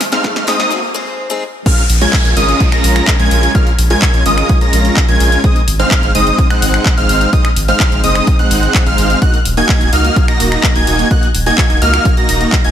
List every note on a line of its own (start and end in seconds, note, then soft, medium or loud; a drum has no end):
0.00 0.18 G#1 loud
0.00 snare medium
0.00 open hi-hat loud
0.00 riser medium
0.12 0.20 G#3 medium
0.12 0.45 G#3 loud
0.12 0.20 C4 medium
0.12 0.45 C4 medium
0.12 0.45 D#4 medium
0.12 0.20 D#4 medium
0.12 0.20 G#4 medium
0.12 0.45 C5 medium
0.12 0.45 F5 loud
0.12 0.45 F6 loud
0.12 snare medium
0.12 closed hi-hat soft
0.24 kick loud
0.24 snare medium
0.24 closed hi-hat medium
0.36 0.45 G#1 medium
0.36 snare medium
0.36 closed hi-hat soft
0.47 0.65 F#1 medium
0.47 0.55 G#3 medium
0.47 0.72 G#3 loud
0.47 0.55 C4 medium
0.47 0.72 C4 medium
0.47 0.55 D#4 medium
0.47 0.72 D#4 medium
0.47 0.56 G#4 medium
0.47 0.72 C5 medium
0.47 0.72 D#5 loud
0.47 0.72 D#6 loud
0.47 snare loud
0.47 open hi-hat loud
0.60 snare medium
0.60 closed hi-hat soft
0.70 0.79 G#3 medium
0.70 0.79 C4 medium
0.70 0.79 D#4 medium
0.70 0.79 F#4 medium
0.94 1.27 G#3 medium
0.94 1.28 C4 medium
0.94 1.28 D#4 medium
0.94 1.28 C5 medium
1.30 1.42 G#3 medium
1.30 1.42 C4 medium
1.30 1.43 D#4 medium
1.30 1.43 G#4 loud
1.66 1.82 G#3 medium
1.66 1.82 C#4 medium
1.66 1.82 F4 medium
1.66 1.82 A#4 medium
1.66 1.82 F5 medium
1.66 1.82 F6 medium
1.66 kick loud
1.66 closed hi-hat medium
1.66 crash loud
1.66 downlifter medium
1.78 closed hi-hat soft
1.90 2.07 A#1 loud
1.90 open hi-hat loud
2.01 2.34 G#3 loud
2.01 2.34 C#4 medium
2.01 2.34 F4 medium
2.01 2.34 A#4 medium
2.01 2.34 G#5 loud
2.01 2.34 G#6 loud
2.01 closed hi-hat soft
2.13 kick loud
2.13 clap loud
2.13 closed hi-hat medium
2.25 2.34 A#1 loud
2.25 closed hi-hat soft
2.37 2.54 G#1 medium
2.37 2.69 G#3 loud
2.37 2.69 C#4 medium
2.37 2.69 F4 medium
2.37 2.69 A#4 medium
2.37 2.69 D#5 loud
2.37 2.69 D#6 loud
2.37 open hi-hat medium
2.49 closed hi-hat soft
2.60 kick loud
2.60 closed hi-hat medium
2.72 3.17 G#3 medium
2.72 3.17 C#4 medium
2.72 3.17 F4 medium
2.72 3.17 A#4 medium
2.72 3.17 A#5 medium
2.72 3.17 A#6 medium
2.72 finger snap medium
2.72 closed hi-hat soft
2.84 3.01 A#1 medium
2.84 open hi-hat loud
2.96 finger snap medium
2.96 closed hi-hat soft
3.08 kick loud
3.08 clap loud
3.08 closed hi-hat medium
3.19 3.28 A#1 medium
3.19 3.52 G#3 loud
3.19 3.52 C#4 medium
3.19 3.52 F4 medium
3.19 3.52 A#4 medium
3.19 3.52 G#5 loud
3.19 3.52 G#6 loud
3.19 closed hi-hat soft
3.31 3.49 A#1 medium
3.31 open hi-hat medium
3.43 closed hi-hat soft
3.55 3.71 G#3 medium
3.55 3.71 C#4 medium
3.55 3.71 F4 medium
3.55 3.71 A#4 medium
3.55 3.71 F5 medium
3.55 3.71 F6 medium
3.55 kick loud
3.55 closed hi-hat medium
3.67 closed hi-hat soft
3.79 3.96 A#1 loud
3.79 open hi-hat loud
3.90 4.23 G#3 loud
3.90 4.23 C#4 medium
3.90 4.23 F4 medium
3.90 4.23 A#4 medium
3.90 4.23 G#5 loud
3.90 4.23 G#6 loud
3.90 closed hi-hat soft
4.02 kick loud
4.02 clap loud
4.02 closed hi-hat medium
4.14 4.23 A#1 loud
4.14 closed hi-hat soft
4.26 4.43 G#1 medium
4.26 4.58 G#3 loud
4.26 4.58 C#4 medium
4.26 4.58 F4 medium
4.26 4.58 A#4 medium
4.26 4.58 D#5 loud
4.26 4.59 D#6 loud
4.26 open hi-hat loud
4.38 finger snap medium
4.38 closed hi-hat soft
4.49 kick loud
4.49 closed hi-hat medium
4.61 5.06 G#3 medium
4.61 5.06 C#4 medium
4.61 5.06 F4 medium
4.61 5.06 A#4 medium
4.61 5.06 A#5 medium
4.61 5.06 A#6 medium
4.61 closed hi-hat soft
4.73 4.90 A#1 medium
4.73 open hi-hat loud
4.85 closed hi-hat soft
4.97 kick loud
4.97 clap loud
4.97 closed hi-hat medium
5.08 5.17 A#1 medium
5.08 5.41 G#3 loud
5.08 5.41 C#4 medium
5.08 5.41 F4 medium
5.08 5.41 A#4 medium
5.08 5.41 G#5 loud
5.08 5.41 G#6 loud
5.08 closed hi-hat soft
5.20 5.38 A#1 medium
5.20 open hi-hat medium
5.32 closed hi-hat soft
5.44 5.60 G#3 medium
5.44 5.60 C4 medium
5.44 5.60 D#4 medium
5.44 5.60 C5 medium
5.44 5.60 D#5 loud
5.44 5.60 D#6 medium
5.44 kick loud
5.44 closed hi-hat medium
5.56 closed hi-hat soft
5.68 5.85 G#1 loud
5.68 open hi-hat loud
5.79 6.12 G#3 loud
5.79 6.12 C4 medium
5.79 6.12 D#4 medium
5.79 6.12 C5 medium
5.79 6.12 F5 loud
5.79 6.12 F6 loud
5.79 closed hi-hat soft
5.91 kick loud
5.91 clap loud
5.91 closed hi-hat medium
6.03 6.12 G#1 medium
6.03 closed hi-hat soft
6.15 6.32 F#1 medium
6.15 6.48 G#3 loud
6.15 6.47 C4 medium
6.15 6.48 D#4 medium
6.15 6.47 C5 medium
6.15 6.48 D#5 loud
6.15 6.48 D#6 loud
6.15 open hi-hat loud
6.27 closed hi-hat soft
6.38 kick loud
6.38 closed hi-hat medium
6.50 6.95 G#3 medium
6.50 6.95 C4 medium
6.50 6.95 D#4 medium
6.50 6.95 C5 medium
6.50 6.95 F#5 medium
6.50 6.95 F#6 medium
6.50 finger snap medium
6.50 closed hi-hat soft
6.62 6.79 G#1 medium
6.62 open hi-hat loud
6.74 finger snap medium
6.74 closed hi-hat soft
6.86 kick loud
6.86 clap loud
6.86 closed hi-hat medium
6.97 7.06 G#1 medium
6.97 7.30 G#3 loud
6.97 7.30 C4 medium
6.97 7.30 D#4 medium
6.97 7.30 C5 medium
6.97 7.30 F5 loud
6.97 7.30 F6 loud
6.97 closed hi-hat soft
7.09 7.27 G#1 medium
7.09 open hi-hat loud
7.21 closed hi-hat soft
7.33 7.49 G#3 medium
7.33 7.49 C4 medium
7.33 7.49 D#4 medium
7.33 7.49 C5 medium
7.33 7.49 D#5 medium
7.33 7.49 D#6 medium
7.33 kick loud
7.33 closed hi-hat medium
7.45 finger snap medium
7.45 closed hi-hat soft
7.56 7.74 G#1 loud
7.56 open hi-hat loud
7.68 8.01 G#3 loud
7.68 8.01 C4 medium
7.68 8.01 D#4 medium
7.68 8.01 C5 medium
7.68 8.01 F5 loud
7.68 8.01 F6 loud
7.68 closed hi-hat soft
7.80 kick loud
7.80 clap loud
7.80 closed hi-hat medium
7.92 8.01 G#1 medium
7.92 closed hi-hat soft
8.04 8.21 F#1 medium
8.04 8.36 G#3 loud
8.04 8.36 C4 medium
8.04 8.36 D#4 medium
8.04 8.36 C5 medium
8.04 8.36 D#5 loud
8.04 8.36 D#6 loud
8.04 open hi-hat loud
8.15 finger snap medium
8.15 closed hi-hat soft
8.27 kick loud
8.27 closed hi-hat medium
8.39 8.84 G#3 medium
8.39 8.84 C4 medium
8.39 8.84 D#4 medium
8.39 8.84 C5 medium
8.39 8.84 F#5 medium
8.39 8.84 F#6 medium
8.39 closed hi-hat soft
8.51 8.68 G#1 medium
8.51 open hi-hat loud
8.63 closed hi-hat soft
8.75 kick loud
8.75 clap loud
8.75 closed hi-hat medium
8.86 8.95 G#1 medium
8.86 9.19 G#3 loud
8.86 9.19 C4 medium
8.86 9.19 D#4 medium
8.86 9.19 C5 medium
8.86 9.19 F5 loud
8.86 9.19 F6 loud
8.86 closed hi-hat soft
8.98 9.15 G#1 loud
8.98 open hi-hat medium
9.10 closed hi-hat soft
9.22 9.38 A#3 medium
9.22 9.38 D#4 medium
9.22 9.38 F#4 medium
9.22 9.38 D#5 medium
9.22 9.38 F#5 medium
9.22 9.38 F#6 loud
9.22 kick loud
9.22 closed hi-hat medium
9.34 closed hi-hat soft
9.45 9.63 D#1 loud
9.45 open hi-hat loud
9.57 9.90 A#3 medium
9.57 9.90 D#4 medium
9.57 9.90 F#4 medium
9.57 9.90 D#5 medium
9.57 9.90 G#5 loud
9.57 9.90 G#6 loud
9.57 closed hi-hat soft
9.69 kick loud
9.69 clap loud
9.69 closed hi-hat medium
9.81 9.90 D#1 medium
9.81 closed hi-hat soft
9.93 10.10 C#2 medium
9.93 10.25 A#3 loud
9.93 10.25 D#4 medium
9.93 10.25 F#4 medium
9.93 10.25 D#5 medium
9.93 10.25 F5 loud
9.93 10.25 F6 loud
9.93 open hi-hat medium
10.05 closed hi-hat soft
10.16 kick loud
10.16 closed hi-hat medium
10.28 10.73 A#3 medium
10.28 10.73 D#4 medium
10.28 10.73 F#4 medium
10.28 10.73 D#5 medium
10.28 10.73 A#5 medium
10.28 10.73 A#6 medium
10.28 finger snap medium
10.28 closed hi-hat soft
10.40 10.57 D#1 medium
10.40 open hi-hat loud
10.52 finger snap medium
10.52 closed hi-hat soft
10.64 kick loud
10.64 clap loud
10.64 closed hi-hat medium
10.75 10.84 D#1 medium
10.75 11.08 A#3 loud
10.75 11.08 D#4 medium
10.75 11.08 F#4 medium
10.75 11.08 D#5 medium
10.75 11.08 G#5 loud
10.75 11.08 G#6 loud
10.75 closed hi-hat soft
10.87 11.04 D#1 medium
10.87 open hi-hat medium
10.99 closed hi-hat soft
11.11 11.27 A#3 medium
11.11 11.27 D#4 medium
11.11 11.27 F#4 medium
11.11 11.27 D#5 medium
11.11 11.27 F#5 medium
11.11 11.27 F#6 medium
11.11 kick loud
11.11 closed hi-hat medium
11.23 closed hi-hat soft
11.34 11.52 D#1 loud
11.34 open hi-hat loud
11.46 11.79 A#3 loud
11.46 11.79 D#4 medium
11.46 11.79 F#4 medium
11.46 11.79 D#5 medium
11.46 11.79 G#5 loud
11.46 11.79 G#6 loud
11.46 closed hi-hat soft
11.58 kick loud
11.58 clap loud
11.58 closed hi-hat medium
11.70 11.79 D#1 medium
11.70 closed hi-hat soft
11.82 11.99 C#2 medium
11.82 12.14 A#3 loud
11.82 12.14 D#4 medium
11.82 12.14 F#4 medium
11.82 12.14 D#5 medium
11.82 12.14 F5 loud
11.82 12.14 F6 loud
11.82 open hi-hat medium
11.94 finger snap medium
11.94 closed hi-hat soft
12.05 kick loud
12.05 closed hi-hat medium
12.17 12.62 A#3 medium
12.17 12.62 D#4 medium
12.17 12.62 F#4 medium
12.17 12.62 D#5 medium
12.17 12.62 A#5 medium
12.17 12.62 A#6 medium
12.17 closed hi-hat soft
12.29 12.46 D#1 medium
12.29 open hi-hat loud
12.41 closed hi-hat soft
12.52 kick loud
12.52 clap loud
12.52 closed hi-hat medium
12.64 12.71 D#1 medium
12.64 12.71 A#3 loud
12.64 12.71 D#4 medium
12.64 12.71 F#4 medium
12.64 12.71 D#5 medium
12.64 12.71 G#5 loud
12.64 12.71 G#6 loud
12.64 closed hi-hat soft